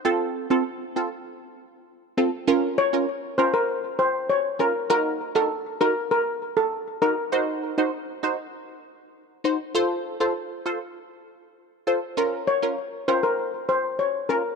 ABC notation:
X:1
M:4/4
L:1/16
Q:1/4=99
K:Bbm
V:1 name="Steel pan"
z16 | z2 d z3 c B z2 c z d z B z | B z2 =A z2 B z B z2 A z2 B z | z16 |
z16 | z2 d z3 c B z2 c z d z B z |]
V:2 name="Synth stab"
[CF=A]3 [CFA] z2 [CFA] z6 z [CFA] z | [DFB]3 [DFB] z2 [DFB] z6 z [DFB] z | [EGB]3 [EGB] z2 [EGB] z6 z [EGB] z | [EGc]3 [EGc] z2 [EGc] z6 z [EGc] z |
[F=Ac]3 [FAc] z2 [FAc] z6 z [FAc] z | [DFB]3 [DFB] z2 [DFB] z6 z [DFB] z |]